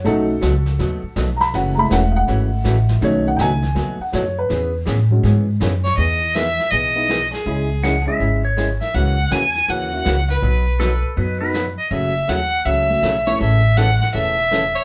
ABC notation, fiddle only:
X:1
M:4/4
L:1/8
Q:"Swing" 1/4=162
K:E
V:1 name="Fiddle"
z8 | z8 | z8 | z6 z c |
d2 e2 d3 G- | G3 z4 e | f2 g2 f3 B- | B3 z4 d |
e2 f2 e3 c | e2 f2 e3 c |]